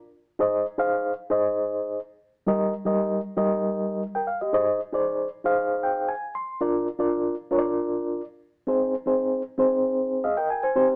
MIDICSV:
0, 0, Header, 1, 2, 480
1, 0, Start_track
1, 0, Tempo, 518135
1, 357, Time_signature, 4, 2, 24, 8
1, 10151, End_track
2, 0, Start_track
2, 0, Title_t, "Reed electric piano"
2, 0, Program_c, 0, 4
2, 363, Note_on_c, 0, 63, 76
2, 369, Note_on_c, 0, 68, 69
2, 374, Note_on_c, 0, 72, 67
2, 379, Note_on_c, 0, 75, 84
2, 600, Note_off_c, 0, 63, 0
2, 603, Note_off_c, 0, 68, 0
2, 605, Note_off_c, 0, 72, 0
2, 608, Note_off_c, 0, 75, 0
2, 723, Note_on_c, 0, 63, 76
2, 725, Note_on_c, 0, 68, 68
2, 729, Note_on_c, 0, 72, 64
2, 736, Note_on_c, 0, 77, 85
2, 1040, Note_off_c, 0, 63, 0
2, 1041, Note_off_c, 0, 68, 0
2, 1043, Note_off_c, 0, 72, 0
2, 1047, Note_off_c, 0, 77, 0
2, 1205, Note_on_c, 0, 63, 83
2, 1208, Note_on_c, 0, 68, 76
2, 1212, Note_on_c, 0, 72, 68
2, 1219, Note_on_c, 0, 75, 84
2, 1841, Note_off_c, 0, 63, 0
2, 1843, Note_off_c, 0, 68, 0
2, 1845, Note_off_c, 0, 72, 0
2, 1849, Note_off_c, 0, 75, 0
2, 2284, Note_on_c, 0, 55, 76
2, 2287, Note_on_c, 0, 63, 66
2, 2290, Note_on_c, 0, 67, 69
2, 2295, Note_on_c, 0, 70, 71
2, 2298, Note_on_c, 0, 75, 82
2, 2522, Note_off_c, 0, 55, 0
2, 2524, Note_off_c, 0, 63, 0
2, 2526, Note_off_c, 0, 67, 0
2, 2528, Note_off_c, 0, 70, 0
2, 2529, Note_off_c, 0, 75, 0
2, 2641, Note_on_c, 0, 55, 73
2, 2642, Note_on_c, 0, 63, 71
2, 2645, Note_on_c, 0, 67, 65
2, 2652, Note_on_c, 0, 70, 67
2, 2654, Note_on_c, 0, 75, 78
2, 2962, Note_off_c, 0, 55, 0
2, 2962, Note_off_c, 0, 63, 0
2, 2963, Note_off_c, 0, 67, 0
2, 2967, Note_off_c, 0, 70, 0
2, 2968, Note_off_c, 0, 75, 0
2, 3119, Note_on_c, 0, 55, 74
2, 3120, Note_on_c, 0, 63, 71
2, 3123, Note_on_c, 0, 67, 73
2, 3126, Note_on_c, 0, 70, 70
2, 3128, Note_on_c, 0, 75, 89
2, 3724, Note_off_c, 0, 67, 0
2, 3726, Note_off_c, 0, 70, 0
2, 3727, Note_off_c, 0, 75, 0
2, 3761, Note_off_c, 0, 55, 0
2, 3761, Note_off_c, 0, 63, 0
2, 3845, Note_on_c, 0, 79, 57
2, 3851, Note_on_c, 0, 70, 46
2, 3957, Note_on_c, 0, 77, 62
2, 3959, Note_off_c, 0, 79, 0
2, 3962, Note_off_c, 0, 70, 0
2, 4075, Note_off_c, 0, 77, 0
2, 4089, Note_on_c, 0, 75, 58
2, 4092, Note_on_c, 0, 67, 49
2, 4196, Note_off_c, 0, 75, 0
2, 4196, Note_on_c, 0, 63, 81
2, 4199, Note_on_c, 0, 68, 70
2, 4205, Note_on_c, 0, 72, 73
2, 4208, Note_on_c, 0, 75, 83
2, 4317, Note_off_c, 0, 67, 0
2, 4440, Note_off_c, 0, 63, 0
2, 4442, Note_off_c, 0, 68, 0
2, 4444, Note_off_c, 0, 72, 0
2, 4446, Note_off_c, 0, 75, 0
2, 4561, Note_on_c, 0, 63, 75
2, 4568, Note_on_c, 0, 68, 63
2, 4574, Note_on_c, 0, 72, 67
2, 4579, Note_on_c, 0, 74, 84
2, 4883, Note_off_c, 0, 63, 0
2, 4886, Note_off_c, 0, 68, 0
2, 4889, Note_off_c, 0, 72, 0
2, 4892, Note_off_c, 0, 74, 0
2, 5041, Note_on_c, 0, 63, 76
2, 5050, Note_on_c, 0, 68, 73
2, 5051, Note_on_c, 0, 72, 69
2, 5056, Note_on_c, 0, 77, 88
2, 5404, Note_on_c, 0, 79, 64
2, 5628, Note_off_c, 0, 79, 0
2, 5638, Note_on_c, 0, 80, 66
2, 5682, Note_off_c, 0, 63, 0
2, 5686, Note_off_c, 0, 68, 0
2, 5687, Note_off_c, 0, 72, 0
2, 5689, Note_off_c, 0, 77, 0
2, 5865, Note_off_c, 0, 80, 0
2, 5883, Note_on_c, 0, 84, 61
2, 6108, Note_off_c, 0, 84, 0
2, 6121, Note_on_c, 0, 62, 75
2, 6122, Note_on_c, 0, 65, 66
2, 6125, Note_on_c, 0, 70, 70
2, 6128, Note_on_c, 0, 74, 80
2, 6363, Note_off_c, 0, 62, 0
2, 6363, Note_off_c, 0, 65, 0
2, 6365, Note_off_c, 0, 70, 0
2, 6366, Note_off_c, 0, 74, 0
2, 6474, Note_on_c, 0, 62, 73
2, 6475, Note_on_c, 0, 65, 68
2, 6480, Note_on_c, 0, 70, 64
2, 6483, Note_on_c, 0, 74, 80
2, 6799, Note_off_c, 0, 62, 0
2, 6799, Note_off_c, 0, 65, 0
2, 6802, Note_off_c, 0, 70, 0
2, 6803, Note_off_c, 0, 74, 0
2, 6955, Note_on_c, 0, 62, 80
2, 6958, Note_on_c, 0, 65, 68
2, 6962, Note_on_c, 0, 70, 72
2, 6969, Note_on_c, 0, 73, 70
2, 7025, Note_off_c, 0, 73, 0
2, 7027, Note_on_c, 0, 74, 87
2, 7598, Note_off_c, 0, 62, 0
2, 7600, Note_off_c, 0, 65, 0
2, 7601, Note_off_c, 0, 70, 0
2, 7634, Note_off_c, 0, 74, 0
2, 8031, Note_on_c, 0, 60, 75
2, 8035, Note_on_c, 0, 63, 70
2, 8043, Note_on_c, 0, 68, 70
2, 8045, Note_on_c, 0, 72, 83
2, 8277, Note_off_c, 0, 60, 0
2, 8279, Note_off_c, 0, 63, 0
2, 8282, Note_off_c, 0, 68, 0
2, 8284, Note_off_c, 0, 72, 0
2, 8391, Note_on_c, 0, 60, 72
2, 8399, Note_on_c, 0, 63, 68
2, 8403, Note_on_c, 0, 72, 77
2, 8404, Note_on_c, 0, 68, 68
2, 8716, Note_off_c, 0, 60, 0
2, 8720, Note_off_c, 0, 63, 0
2, 8722, Note_off_c, 0, 68, 0
2, 8722, Note_off_c, 0, 72, 0
2, 8874, Note_on_c, 0, 60, 82
2, 8878, Note_on_c, 0, 63, 68
2, 8882, Note_on_c, 0, 68, 67
2, 8888, Note_on_c, 0, 72, 84
2, 9481, Note_off_c, 0, 68, 0
2, 9484, Note_off_c, 0, 72, 0
2, 9486, Note_on_c, 0, 75, 67
2, 9487, Note_on_c, 0, 77, 58
2, 9492, Note_on_c, 0, 68, 52
2, 9515, Note_off_c, 0, 60, 0
2, 9517, Note_off_c, 0, 63, 0
2, 9598, Note_off_c, 0, 77, 0
2, 9601, Note_off_c, 0, 68, 0
2, 9609, Note_on_c, 0, 79, 66
2, 9617, Note_on_c, 0, 70, 52
2, 9706, Note_off_c, 0, 75, 0
2, 9730, Note_on_c, 0, 80, 64
2, 9832, Note_off_c, 0, 79, 0
2, 9837, Note_off_c, 0, 70, 0
2, 9839, Note_off_c, 0, 80, 0
2, 9850, Note_on_c, 0, 80, 57
2, 9852, Note_on_c, 0, 72, 50
2, 9960, Note_off_c, 0, 72, 0
2, 9964, Note_on_c, 0, 63, 66
2, 9966, Note_on_c, 0, 60, 77
2, 9970, Note_on_c, 0, 67, 70
2, 9971, Note_on_c, 0, 72, 87
2, 10073, Note_off_c, 0, 80, 0
2, 10151, Note_off_c, 0, 60, 0
2, 10151, Note_off_c, 0, 63, 0
2, 10151, Note_off_c, 0, 67, 0
2, 10151, Note_off_c, 0, 72, 0
2, 10151, End_track
0, 0, End_of_file